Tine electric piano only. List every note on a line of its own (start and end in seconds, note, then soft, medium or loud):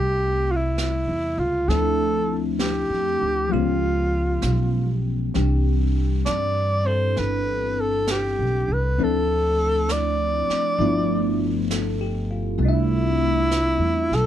0.00 1.66 C3 soft
0.00 1.67 G3 soft
0.00 1.68 A3 soft
0.00 1.68 C4 soft
0.00 1.69 E5 soft
1.70 3.48 F3 soft
1.70 3.52 A3 soft
1.70 3.51 C4 soft
1.70 3.51 D4 soft
1.70 3.52 E4 medium
3.49 5.33 F3 soft
3.49 5.34 G#3 soft
3.49 5.34 B3 soft
3.53 5.35 C#4 soft
3.53 5.35 G4 soft
5.35 8.98 E3 soft
5.35 8.98 G3 soft
5.35 6.84 C4 soft
5.35 6.85 D4 soft
5.35 8.99 G4 soft
6.85 8.97 C4 soft
6.85 8.98 D4 soft
6.85 8.98 E4 soft
6.85 8.99 A4 soft
8.99 10.79 F3 soft
8.99 10.79 A3 soft
8.99 10.80 C4 soft
8.99 10.80 D4 soft
8.99 10.80 E4 soft
10.80 12.60 F3 soft
10.80 12.58 A3 soft
10.80 12.61 B3 soft
10.80 12.61 D4 soft
10.80 12.61 E4 medium
11.72 12.26 A4 soft
12.01 12.47 G4 soft
12.31 12.77 F4 soft
12.58 14.27 G3 soft
12.58 14.27 A3 soft
12.63 14.27 C4 soft
12.63 14.27 D4 soft
12.69 14.27 E5 soft